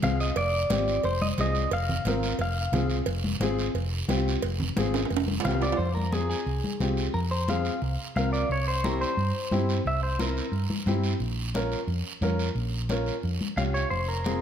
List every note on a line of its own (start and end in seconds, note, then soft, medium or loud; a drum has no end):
0.02 0.30 C2 medium
0.02 0.27 C4 medium
0.02 0.27 F4 medium
0.02 0.27 G#4 medium
0.02 0.20 F5 medium
0.02 cowbell medium
0.02 high conga medium
0.02 low conga medium
0.02 short guiro medium
0.20 0.36 D#5 medium
0.20 short guiro medium
0.36 0.64 F1 medium
0.36 1.07 D5 medium
0.36 cowbell loud
0.36 high conga soft
0.36 long guiro medium
0.70 0.98 G#1 medium
0.70 0.94 C4 medium
0.70 0.95 F4 medium
0.70 0.95 G4 medium
0.70 cowbell medium
0.70 high conga medium
0.70 short guiro medium
0.88 short guiro medium
1.03 1.31 F1 medium
1.03 1.21 C5 medium
1.03 cowbell medium
1.03 high conga soft
1.03 long guiro medium
1.21 1.27 D#5 medium
1.21 high conga medium
1.38 1.65 C2 medium
1.38 1.62 C4 medium
1.38 1.63 F4 medium
1.38 1.63 G#4 medium
1.38 1.73 D#5 medium
1.38 cowbell medium
1.38 high conga medium
1.38 short guiro medium
1.55 short guiro medium
1.71 1.99 F1 medium
1.71 2.37 F5 medium
1.71 cowbell loud
1.71 high conga soft
1.71 long guiro medium
1.89 low conga medium
2.05 2.32 G#1 medium
2.05 2.30 C4 medium
2.05 2.30 F4 medium
2.05 2.31 A#4 medium
2.05 cowbell medium
2.05 high conga medium
2.05 short guiro medium
2.23 short guiro medium
2.39 2.66 F1 medium
2.39 2.88 F5 medium
2.39 cowbell medium
2.39 high conga soft
2.39 long guiro medium
2.72 3.00 C2 medium
2.72 2.97 C4 medium
2.72 2.97 F4 medium
2.72 2.98 G#4 medium
2.72 cowbell medium
2.72 high conga medium
2.72 low conga medium
2.72 low timbale medium
2.72 short guiro medium
2.90 short guiro medium
3.06 3.34 F1 medium
3.06 cowbell loud
3.06 high conga soft
3.06 long guiro medium
3.24 high conga medium
3.40 3.68 G#1 medium
3.40 3.65 C4 medium
3.40 3.66 F4 medium
3.40 3.66 G#4 loud
3.40 cowbell medium
3.40 high conga medium
3.40 short guiro medium
3.59 short guiro medium
3.74 4.02 F1 medium
3.74 cowbell medium
3.74 high conga soft
3.74 long guiro medium
4.08 4.36 C2 medium
4.08 4.33 C4 medium
4.08 4.33 F4 medium
4.08 4.33 G4 medium
4.08 cowbell medium
4.08 high conga medium
4.08 low timbale medium
4.08 short guiro medium
4.28 short guiro medium
4.42 4.70 F1 medium
4.42 cowbell loud
4.42 high conga soft
4.42 long guiro medium
4.60 low conga medium
4.76 5.04 G#1 medium
4.76 5.01 C4 medium
4.76 5.01 F4 medium
4.76 5.01 G#4 medium
4.76 cowbell medium
4.76 high conga medium
4.76 short guiro medium
4.94 high timbale medium
4.94 short guiro medium
5.05 high timbale medium
5.10 5.38 F1 medium
5.10 cowbell medium
5.10 high conga soft
5.10 long guiro medium
5.17 high timbale medium
5.28 high conga medium
5.40 low timbale medium
5.44 5.72 C2 medium
5.44 5.69 C4 medium
5.44 5.69 F4 medium
5.44 5.69 G4 medium
5.44 5.61 F5 medium
5.44 cowbell medium
5.44 high conga medium
5.44 low conga medium
5.44 short guiro medium
5.51 low timbale medium
5.62 5.78 D5 loud
5.62 low timbale medium
5.62 short guiro medium
5.72 low timbale loud
5.77 6.33 F2 medium
5.77 5.94 C5 medium
5.77 high conga soft
5.77 long guiro medium
5.95 6.13 A#4 medium
5.95 high conga medium
6.12 6.36 C4 medium
6.12 6.37 F4 medium
6.12 6.28 G#4 medium
6.12 6.37 G#4 medium
6.12 high conga medium
6.12 short guiro medium
6.30 7.10 G#4 medium
6.30 short guiro medium
6.46 6.60 C2 medium
6.46 high conga soft
6.46 long guiro medium
6.64 high conga medium
6.80 7.07 C2 medium
6.80 7.04 C4 medium
6.80 7.05 F4 medium
6.80 7.05 G4 medium
6.80 high conga medium
6.80 short guiro medium
6.97 short guiro medium
7.14 7.68 F2 medium
7.14 7.19 A#4 medium
7.14 high conga soft
7.14 long guiro medium
7.31 7.49 C5 medium
7.48 7.72 C4 medium
7.48 7.72 F4 medium
7.48 7.73 G#4 medium
7.48 7.81 F5 medium
7.48 high conga medium
7.48 short guiro medium
7.65 short guiro medium
7.82 7.96 C2 medium
7.82 high conga soft
7.82 long guiro medium
8.16 8.43 C2 medium
8.16 8.40 C4 medium
8.16 8.40 F4 medium
8.16 8.40 A#4 medium
8.16 8.32 F5 medium
8.16 high conga medium
8.16 short guiro medium
8.33 8.49 D5 medium
8.33 short guiro medium
8.49 9.04 C2 medium
8.49 8.67 C#5 medium
8.49 high conga soft
8.49 long guiro medium
8.68 8.85 C5 medium
8.84 9.08 C4 medium
8.84 9.08 E4 medium
8.84 9.08 G4 medium
8.84 9.02 A#4 medium
8.84 high conga medium
8.84 short guiro medium
9.01 9.82 C5 loud
9.01 short guiro medium
9.17 9.31 G2 medium
9.17 high conga soft
9.17 long guiro medium
9.51 9.79 G2 medium
9.51 9.75 C4 medium
9.51 9.75 E4 medium
9.51 9.76 G4 medium
9.51 high conga medium
9.51 short guiro medium
9.69 short guiro medium
9.85 10.39 C2 medium
9.85 10.02 E5 medium
9.85 high conga soft
9.85 long guiro medium
10.03 10.18 C5 medium
10.19 10.43 C4 medium
10.19 10.43 E4 medium
10.19 10.43 A#4 medium
10.19 10.51 A#4 medium
10.19 high conga medium
10.19 short guiro medium
10.37 short guiro medium
10.52 10.66 G2 medium
10.52 high conga soft
10.52 long guiro medium
10.70 high conga medium
10.86 11.13 G2 medium
10.86 11.10 C4 medium
10.86 11.11 E4 medium
10.86 11.11 G4 medium
10.86 high conga medium
10.86 short guiro medium
11.03 short guiro medium
11.20 11.74 A#1 medium
11.20 high conga soft
11.20 long guiro medium
11.54 11.78 C#4 medium
11.54 11.79 F4 medium
11.54 11.79 A#4 medium
11.54 high conga medium
11.54 short guiro medium
11.72 short guiro medium
11.87 12.01 F2 medium
11.87 high conga soft
11.87 long guiro medium
12.21 12.49 F2 medium
12.21 12.46 C#4 medium
12.21 12.46 F4 medium
12.21 12.46 A#4 medium
12.21 high conga medium
12.21 short guiro medium
12.39 short guiro medium
12.55 13.10 A#1 loud
12.55 high conga soft
12.55 long guiro medium
12.89 13.14 C#4 medium
12.89 13.14 F4 medium
12.89 13.14 A#4 medium
12.89 high conga medium
12.89 short guiro medium
13.06 short guiro medium
13.23 13.37 F2 medium
13.23 high conga soft
13.23 long guiro medium
13.41 high conga medium
13.57 13.84 C2 medium
13.57 13.81 C#4 medium
13.57 13.81 F4 medium
13.57 13.81 G4 medium
13.57 13.62 F5 medium
13.57 high conga medium
13.57 short guiro medium
13.74 13.90 C#5 medium
13.74 short guiro medium
13.90 14.41 F1 medium
13.90 14.07 C5 loud
13.90 high conga soft
13.90 long guiro medium
14.08 14.41 A#4 medium
14.24 14.41 C4 medium
14.24 14.41 F4 medium
14.24 14.41 G#4 medium
14.24 high conga medium
14.24 short guiro medium